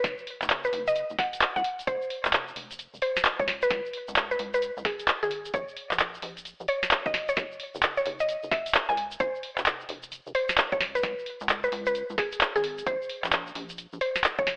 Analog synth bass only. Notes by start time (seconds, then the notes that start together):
0.04 F#1
0.42 F#1
0.73 F#1
1.10 F#1
1.56 C#2
1.87 F1
2.25 F1
2.56 F1
2.94 F1
3.39 C#2
3.71 C#2
4.08 C#2
4.39 C#2
4.77 C#2
5.23 G#1
5.54 A#1
5.91 A#1
6.23 A#1
6.60 A#1
7.06 F#1
7.37 F#1
7.75 F#1
8.06 F#1
8.43 F#1
8.89 C#2
9.20 F1
9.58 F1
9.89 F1
10.27 F1
10.72 C#2
11.03 C#2
11.41 C#2
11.72 C#2
12.10 C#2
12.55 G#1
12.87 A#1
13.24 A#1
13.55 A#1
13.93 A#1
14.39 F#1